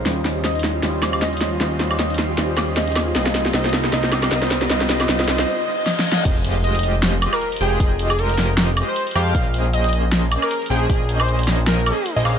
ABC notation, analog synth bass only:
X:1
M:4/4
L:1/16
Q:"Swing 16ths" 1/4=155
K:Fm
V:1 name="Analog synth bass" clef=bass
E,,8 E,,8 | E,,8 E,,8 | C,,4 C,,4 C,,4 C,,4 | C,,2 C,,2 C,,2 C,,2 z8 |
F,,,8- F,,,3 z3 F,,,2 | F,,,8- F,,,3 z3 F,,2 | B,,,8- B,,,3 z3 B,,,2 | B,,,8- B,,,3 z2 B,,, B,,,2 |]